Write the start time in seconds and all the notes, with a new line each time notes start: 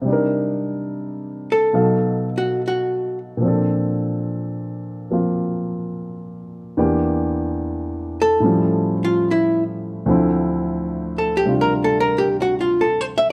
0.02 C3 G3
0.08 D4 D#4
0.13 A#4
1.52 A4
1.73 B2 F#3 D#4 A4 F5
2.38 F#4
2.68 F#4
3.37 A#2 F3
3.42 C4 D4
3.48 A4
5.11 F3 A#3 C4 F4
6.77 E2 E3 A#3 D4 G4
8.22 A4
8.40 A2 G3 C#4 E4
8.45 F3
9.05 F4
9.31 E4
10.06 D2 D3 F3 C4
10.10 E4
11.18 A4
11.37 G4
11.45 C3 G3 D4 F4
11.61 A#4
11.84 A4
12.00 A#4
12.18 G4
12.42 F#4
12.61 F4
12.81 A4
13.01 C5
13.18 E5